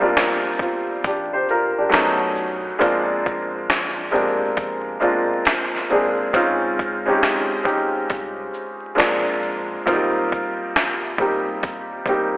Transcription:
0.00 1.94 G3 loud
0.00 1.94 A#3 loud
0.00 0.63 C4 medium
0.00 1.07 D4 loud
0.00 1.92 D#4 loud
0.00 0.47 F4 loud
0.17 finger snap medium
0.17 snare loud
0.17 closed hi-hat medium
0.59 1.04 C4 soft
0.59 1.03 F4 medium
0.59 kick medium
0.59 shaker medium
1.04 1.43 A#1 loud
1.04 1.33 D4 medium
1.04 1.32 G4 medium
1.04 kick loud
1.04 closed hi-hat medium
1.33 1.48 G4 medium
1.33 1.48 C5 medium
1.48 1.77 F4 soft
1.48 1.77 A#4 medium
1.48 shaker soft
1.78 2.20 D4 soft
1.78 2.20 G4 medium
1.89 2.67 F#3 medium
1.89 2.67 A3 medium
1.89 2.68 B3 medium
1.89 2.68 C#4 medium
1.89 2.68 D#4 medium
1.89 closed hi-hat medium
1.94 2.71 B1 loud
1.94 finger snap loud
1.94 snare loud
2.36 shaker soft
2.79 4.38 A#1 loud
2.79 3.74 G#3 loud
2.79 3.74 A#3 medium
2.79 3.74 C4 medium
2.79 3.75 D4 loud
2.79 3.75 F4 loud
2.79 kick loud
2.79 closed hi-hat medium
3.26 kick medium
3.26 shaker soft
3.70 finger snap medium
3.70 snare loud
3.70 closed hi-hat medium
4.11 4.79 G#3 medium
4.11 4.80 A#3 medium
4.11 4.80 C4 medium
4.11 4.80 D4 medium
4.11 4.81 G4 medium
4.11 shaker soft
4.57 4.96 A#1 loud
4.57 kick medium
4.57 closed hi-hat medium
5.00 5.68 G#3 medium
5.00 5.68 A#3 medium
5.00 5.69 C4 medium
5.00 5.69 D4 medium
5.00 5.69 F4 medium
5.00 shaker soft
5.45 finger snap medium
5.45 snare loud
5.45 closed hi-hat medium
5.75 snare soft
5.89 6.25 G#3 medium
5.89 6.25 A#3 medium
5.89 6.25 C4 medium
5.89 6.26 D4 medium
5.89 6.26 G#4 medium
5.89 shaker soft
6.33 7.12 C#2 loud
6.33 6.80 G#3 loud
6.33 6.81 C4 loud
6.33 6.81 C#4 medium
6.33 6.82 D#4 medium
6.33 6.82 F4 loud
6.33 kick loud
6.33 closed hi-hat medium
6.79 kick medium
6.79 shaker soft
7.06 7.52 G#3 medium
7.06 7.52 C4 medium
7.06 7.52 C#4 medium
7.06 7.53 D#4 medium
7.06 7.53 G4 loud
7.23 finger snap medium
7.23 snare loud
7.23 closed hi-hat medium
7.63 8.91 G#3 medium
7.63 8.91 C4 medium
7.63 8.92 C#4 medium
7.63 8.92 D#4 medium
7.63 8.92 G4 medium
7.63 kick medium
7.68 shaker soft
8.10 8.49 C2 medium
8.10 kick medium
8.10 closed hi-hat medium
8.54 shaker soft
8.95 9.73 G#3 loud
8.95 9.73 A#3 medium
8.95 9.73 C4 medium
8.95 9.74 D4 medium
8.95 9.74 F4 medium
8.95 closed hi-hat medium
8.99 9.76 A#1 loud
8.99 finger snap medium
8.99 snare loud
9.43 shaker soft
9.85 11.44 D#1 loud
9.85 9.95 F#3 medium
9.85 10.81 A#3 loud
9.85 10.81 C4 loud
9.85 10.81 D#4 loud
9.85 10.82 F4 loud
9.85 kick loud
9.85 closed hi-hat medium
9.92 10.83 G3 loud
10.32 kick medium
10.32 shaker soft
10.76 finger snap medium
10.76 snare loud
10.76 closed hi-hat medium
11.18 11.86 G3 medium
11.18 11.86 A#3 medium
11.18 11.87 C4 medium
11.18 11.87 D#4 medium
11.18 11.87 G4 medium
11.18 kick medium
11.18 shaker soft
11.63 12.02 D#1 loud
11.63 kick loud
11.63 closed hi-hat medium
12.06 12.37 G3 medium
12.06 12.37 A#3 medium
12.06 12.37 C4 medium
12.06 12.37 D#4 medium
12.06 12.37 G4 medium
12.06 kick medium
12.06 closed hi-hat soft
12.06 shaker soft

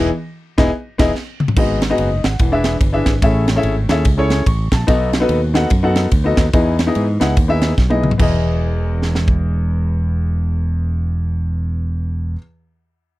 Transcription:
0.58 0.69 E1 loud
0.58 0.69 B3 loud
0.58 0.69 D#4 loud
0.58 0.69 E4 loud
0.58 0.69 G#4 loud
0.58 0.69 D#5 loud
0.58 kick loud
0.58 snare loud
0.98 1.10 E1 loud
0.98 1.10 B3 loud
0.98 1.10 D#4 loud
0.98 1.10 E4 loud
0.98 1.11 G#4 loud
0.98 1.11 D#5 loud
0.98 kick loud
0.98 snare loud
0.98 crash medium
1.15 snare medium
1.40 mid tom loud
1.48 floor tom loud
1.56 1.92 G#1 loud
1.56 2.20 G#2 medium
1.56 1.79 B3 medium
1.56 1.79 D#4 medium
1.56 1.79 F#4 medium
1.56 1.79 G#4 medium
1.56 1.80 D#5 loud
1.56 kick loud
1.56 crash loud
1.82 snare loud
1.82 ride medium
1.90 2.07 B3 medium
1.90 2.07 D#4 medium
1.90 2.08 F#4 medium
1.90 2.08 G#4 medium
1.90 1.97 D#5 loud
1.98 2.20 F#1 medium
1.98 2.23 D#5 medium
1.98 ride medium
2.24 2.38 G#1 loud
2.24 2.63 F#5 medium
2.24 snare loud
2.24 ride medium
2.39 2.75 E1 loud
2.39 3.03 E3 medium
2.39 kick loud
2.39 ride medium
2.52 2.75 D4 medium
2.52 2.75 E4 medium
2.52 2.75 G#4 medium
2.52 2.75 B4 medium
2.52 2.76 E5 loud
2.64 snare loud
2.64 ride medium
2.81 3.02 G1 loud
2.81 kick loud
2.81 ride medium
2.93 3.12 D4 medium
2.93 3.12 E4 medium
2.93 3.12 G#4 medium
2.93 3.12 B4 medium
2.93 3.12 E5 loud
3.06 3.20 G#1 medium
3.06 kick loud
3.06 snare loud
3.06 ride medium
3.22 3.58 A1 loud
3.22 3.85 A2 medium
3.22 3.44 C#4 medium
3.22 3.45 E4 medium
3.22 3.45 G#4 medium
3.22 3.45 A4 medium
3.22 3.45 E5 loud
3.22 kick loud
3.22 ride medium
3.48 snare loud
3.48 ride medium
3.56 3.73 C#4 medium
3.56 3.73 E4 medium
3.56 3.73 G#4 medium
3.56 3.74 A4 medium
3.56 3.74 E5 loud
3.63 3.85 G#1 loud
3.63 ride medium
3.89 4.03 D#2 medium
3.89 4.03 C#4 medium
3.89 4.03 E4 medium
3.89 4.04 G#4 medium
3.89 4.04 A4 medium
3.89 4.04 E5 loud
3.89 snare loud
3.89 ride medium
4.05 4.41 C#2 loud
4.05 kick loud
4.05 ride medium
4.17 4.41 C#4 medium
4.17 4.41 E4 medium
4.17 4.41 G#4 medium
4.17 4.41 A4 medium
4.17 4.41 C#5 loud
4.30 snare loud
4.30 ride medium
4.46 4.68 A1 loud
4.46 4.71 C#6 medium
4.46 kick loud
4.46 ride medium
4.72 4.86 A#1 loud
4.72 5.12 A5 medium
4.72 kick medium
4.72 snare loud
4.72 ride medium
4.87 5.23 B1 loud
4.87 5.50 B2 medium
4.87 5.09 B3 medium
4.87 5.09 D#4 medium
4.87 5.10 F#4 medium
4.87 5.10 A4 medium
4.87 5.10 D#5 loud
4.87 kick loud
4.87 ride medium
5.13 snare loud
5.13 ride medium
5.20 5.38 B3 loud
5.20 5.38 D#4 medium
5.20 5.39 F#4 medium
5.20 5.39 A4 medium
5.20 5.39 B4 loud
5.29 5.64 D#2 loud
5.29 ride medium
5.54 5.68 B3 medium
5.54 5.68 D#4 medium
5.54 5.68 F#4 medium
5.54 5.68 A4 medium
5.54 5.69 F#5 loud
5.54 snare loud
5.54 ride medium
5.70 6.06 F#2 medium
5.70 kick loud
5.70 ride medium
5.83 6.06 B3 medium
5.83 6.06 D#4 medium
5.83 6.07 F#4 medium
5.83 6.07 A4 medium
5.83 6.07 F#5 loud
5.96 snare loud
5.96 ride medium
6.11 6.34 D2 loud
6.11 kick loud
6.11 ride medium
6.24 6.43 B3 medium
6.24 6.43 D#4 medium
6.24 6.44 F#4 medium
6.24 6.44 A4 medium
6.24 6.44 D#5 loud
6.37 6.51 D#2 loud
6.37 kick medium
6.37 snare loud
6.37 ride medium
6.53 6.89 E2 loud
6.53 7.17 E3 medium
6.53 6.76 B3 medium
6.53 6.76 D#4 medium
6.53 6.76 E4 medium
6.53 6.76 G#4 medium
6.53 6.76 D#5 loud
6.53 kick loud
6.53 ride medium
6.79 snare loud
6.79 ride medium
6.87 7.04 B3 medium
6.87 7.04 D#4 medium
6.87 7.04 E4 medium
6.87 7.05 G#4 medium
6.87 7.05 D#5 loud
6.95 7.17 G#2 loud
6.95 ride medium
7.20 7.34 C#2 medium
7.20 7.34 B3 medium
7.20 7.34 D#4 medium
7.20 7.34 E4 medium
7.20 7.35 G#4 medium
7.20 7.35 F#5 loud
7.20 snare loud
7.20 ride medium
7.37 7.72 D#2 loud
7.37 kick loud
7.37 ride medium
7.48 7.72 B3 medium
7.48 7.72 D#4 medium
7.48 7.72 E4 medium
7.48 7.73 G#4 medium
7.48 7.73 E5 loud
7.61 snare loud
7.61 ride medium
7.78 8.13 B1 loud
7.78 kick medium
7.78 snare medium
7.90 8.09 B3 medium
7.90 8.09 D#4 medium
7.90 8.09 E4 medium
7.90 8.09 G#4 medium
7.90 8.09 D#5 medium
7.90 high tom medium
8.03 mid tom loud
8.11 floor tom loud
8.18 12.35 E1 loud
8.18 12.35 E2 medium
8.18 12.33 B3 medium
8.18 12.35 E4 medium
8.18 12.36 G#4 medium
8.18 kick loud
8.18 crash medium
8.22 12.38 D#5 loud
9.02 snare medium
9.15 snare medium
9.28 kick medium

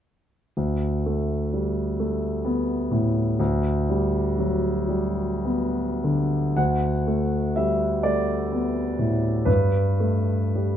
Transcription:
0.57 3.36 D2 soft
1.06 1.82 A3 soft
1.53 2.00 G3 soft
2.00 2.73 A3 soft
2.45 3.20 B3 soft
2.91 3.40 A2 soft
3.39 6.53 D2 soft
3.89 4.68 G3 soft
4.38 4.89 F#3 soft
4.89 5.79 G3 soft
5.45 6.37 B3 soft
6.04 6.58 D3 soft
6.57 9.43 D2 soft
6.57 7.56 F#5 medium
7.07 7.86 A3 soft
7.56 8.05 G3 soft
7.56 8.05 E5 medium
8.03 8.80 A3 soft
8.03 9.46 D5 medium
8.52 9.28 B3 soft
8.99 9.47 A2 soft
9.45 10.77 G2 soft
9.45 10.77 B4 medium
10.00 10.77 A3 soft
10.55 10.77 G3 soft

